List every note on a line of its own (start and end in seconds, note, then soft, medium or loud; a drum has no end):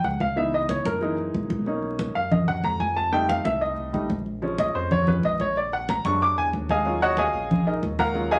0.04 0.80 C#2 medium
0.04 0.20 F#5 medium
0.04 high conga medium
0.20 0.37 F5 medium
0.20 high conga medium
0.36 0.98 E3 medium
0.36 0.99 B3 soft
0.36 0.99 D#4 medium
0.36 0.53 E5 medium
0.36 high conga soft
0.53 0.69 D#5 medium
0.53 high conga soft
0.69 0.85 C#5 medium
0.69 high conga medium
0.85 1.31 F#2 medium
0.85 1.16 A#4 medium
0.85 high conga medium
1.01 1.63 E3 medium
1.01 1.64 G#3 medium
1.01 1.64 A#3 medium
1.01 1.64 D#4 medium
1.01 high conga soft
1.18 high conga soft
1.34 2.10 B1 medium
1.34 high conga medium
1.50 high conga medium
1.66 2.13 A#3 medium
1.66 2.13 C#4 medium
1.66 2.14 D#4 medium
1.66 high conga soft
1.83 high conga soft
1.99 high conga loud
2.15 2.61 F#2 medium
2.15 2.31 F5 medium
2.15 high conga soft
2.31 2.47 D#5 medium
2.31 high conga soft
2.31 low conga medium
2.48 2.64 F#5 medium
2.48 high conga soft
2.48 low conga medium
2.64 3.40 F2 medium
2.64 2.80 A#5 loud
2.64 high conga medium
2.80 2.96 G#5 medium
2.80 high conga medium
2.96 3.12 A5 medium
2.96 high conga soft
3.12 3.92 G3 medium
3.12 3.92 A3 medium
3.12 3.92 D#4 medium
3.12 3.29 G5 loud
3.12 high conga soft
3.29 3.45 F5 medium
3.29 high conga medium
3.45 3.76 C2 medium
3.45 3.61 E5 medium
3.45 high conga loud
3.61 4.07 D#5 medium
3.61 high conga soft
3.78 3.93 C2 medium
3.78 high conga soft
3.93 4.70 A#1 medium
3.93 4.08 G3 medium
3.93 4.08 A3 soft
3.93 4.09 D#4 medium
3.93 high conga medium
4.10 high conga medium
4.26 high conga soft
4.42 5.06 F3 medium
4.42 5.06 G#3 medium
4.42 5.07 C#4 medium
4.42 high conga soft
4.58 4.75 D#5 medium
4.58 high conga medium
4.75 5.20 F2 medium
4.75 4.91 C5 medium
4.75 high conga soft
4.91 5.07 C#5 loud
4.91 high conga soft
4.91 low conga medium
5.07 5.22 F3 soft
5.07 5.22 G#3 soft
5.07 5.23 C#4 soft
5.07 5.24 B4 medium
5.07 high conga soft
5.07 low conga medium
5.23 5.99 A#1 medium
5.23 5.40 D#5 medium
5.23 high conga medium
5.40 5.56 C#5 medium
5.40 high conga medium
5.56 5.72 D5 medium
5.56 high conga soft
5.73 5.89 F#5 medium
5.73 high conga soft
5.89 6.05 A#5 medium
5.89 high conga loud
6.05 6.35 F#2 medium
6.05 6.82 F#3 medium
6.05 6.82 G#3 medium
6.05 6.82 D4 medium
6.05 6.21 C#6 loud
6.05 high conga loud
6.21 6.37 D6 loud
6.21 high conga soft
6.37 6.52 E2 medium
6.37 6.47 G#5 loud
6.37 high conga soft
6.53 7.28 D#2 loud
6.53 high conga medium
6.69 7.00 G#4 medium
6.69 7.00 D#5 medium
6.69 7.00 F5 medium
6.69 7.00 G#5 loud
6.69 high conga medium
6.85 8.11 F#3 medium
6.85 8.11 G#3 medium
6.85 8.11 C#4 soft
6.85 8.12 F4 medium
6.85 high conga soft
7.01 7.18 F#4 medium
7.01 7.18 C#5 medium
7.01 7.17 D#5 medium
7.01 7.18 F#5 loud
7.01 high conga soft
7.17 7.64 G#4 medium
7.17 7.64 D#5 medium
7.17 7.64 F5 medium
7.17 7.63 G#5 loud
7.17 high conga medium
7.33 7.79 A#1 medium
7.33 high conga soft
7.51 high conga soft
7.51 low conga medium
7.67 7.83 D#4 medium
7.67 7.83 G#4 medium
7.67 7.83 A#4 medium
7.67 7.83 D#5 medium
7.67 high conga soft
7.82 8.39 D#2 loud
7.82 high conga medium
7.99 8.29 A#4 medium
7.99 8.29 F5 medium
7.99 8.30 F#5 medium
7.99 8.29 A#5 loud
7.99 high conga medium
8.14 8.39 F#3 medium
8.14 8.39 G#3 medium
8.14 8.39 C#4 medium
8.14 8.39 F4 medium
8.14 high conga soft
8.31 8.39 G#4 medium
8.31 8.39 D#5 medium
8.31 8.39 F5 medium
8.31 8.39 G#5 loud
8.31 high conga soft